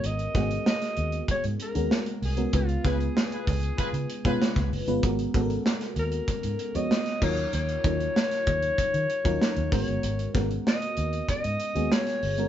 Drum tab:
CC |----------------|----------------|--------------x-|----------------|
HH |xxxx-xxxxxxx-xox|xxxx-xoxxxxx-xox|xxxx-xxxxxxx-x-x|xxxx-xxxxxxx-xox|
SD |--o-oo------o---|--o-o-------oo--|----oo------oo--|----oo------o---|
BD |--o-----o-------|o-o---o-o--o-o--|o-o-----o-----o-|--o---o-o--o--o-|

CC |----------------|
HH |xxxx-xxxxxxx-xox|
SD |--o-o-------oo--|
BD |--o-----o-------|